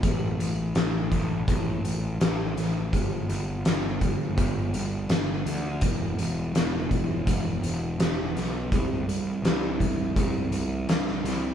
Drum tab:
HH |x-x-x-x-x-x-x-x-|x-x-x-x-x-x-x-x-|x-x-x-x-x-x-x-x-|x-x-x-x-x-x-x-x-|
SD |----o-------o-o-|----o-------o---|----o-------o-o-|----o-------ooo-|
BD |o-----o-o-------|o-----o-o-------|o-----o-o-------|o-----o-o-------|